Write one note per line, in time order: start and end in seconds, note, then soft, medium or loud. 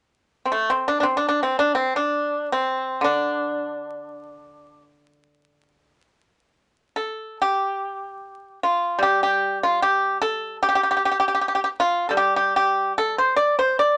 0.45 0.50 C4 soft
0.52 0.69 A3 medium
0.70 0.86 C4 medium
0.88 0.99 D4 medium
1.00 1.16 C4 medium
1.00 1.03 D4 soft
1.17 1.27 D4 medium
1.29 1.42 D4 medium
1.43 1.58 C4 medium
1.59 1.74 D4 medium
1.75 1.96 C4 medium
1.96 2.48 D4 medium
2.52 3.00 C4 medium
3.01 5.92 D3 soft
3.01 4.82 D4 medium
6.96 7.36 A4 soft
7.42 8.59 G4 medium
8.63 8.99 F4 medium
8.99 11.33 G3 soft
9.03 9.20 G4 medium
9.23 9.58 G4 medium
9.63 9.79 F4 medium
9.82 10.17 G4 medium
10.22 10.56 A4 medium
10.63 10.66 G4 medium
10.69 10.73 G4 medium
10.75 10.80 G4 medium
10.83 10.87 G4 soft
10.91 10.95 G4 medium
10.97 11.01 G4 soft
11.05 11.09 G4 medium
11.11 11.16 G4 soft
11.20 11.23 G4 medium
11.28 11.31 G4 soft
11.34 11.38 G4 medium
11.41 11.45 G4 soft
11.48 11.52 G4 soft
11.55 11.59 G4 soft
11.64 11.67 G4 medium
11.80 12.08 F4 medium
12.09 13.97 G3 soft
12.09 12.13 A4 soft
12.17 12.33 G4 medium
12.36 12.53 G4 medium
12.56 12.92 G4 medium
12.98 13.15 A4 medium
13.18 13.35 C5 medium
13.36 13.55 D5 medium
13.59 13.77 C5 medium
13.79 13.97 D5 medium